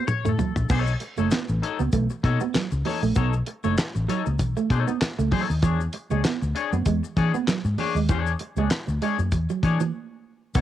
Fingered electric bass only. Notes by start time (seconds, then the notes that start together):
0.25 A2
0.56 A#1
0.70 B1
1.18 F#1
1.49 A1
1.80 C#2
1.93 B1
2.24 B2
2.55 muted fingered electric bass stroke
2.72 C#2
3.03 A#1
3.16 B1
3.65 F#1
3.96 A1
4.27 C#2
4.40 B1
4.70 B2
5.01 muted fingered electric bass stroke
5.19 C#2
5.50 D#2
5.63 E2
6.11 C#2
6.42 D2
6.72 F#2
6.86 E2
7.17 E3
7.47 muted fingered electric bass stroke
7.65 G#2
7.95 D#2
8.09 E2
8.57 C#2
8.88 D2
9.19 F#2
9.32 E2
9.63 E3
10.55 B1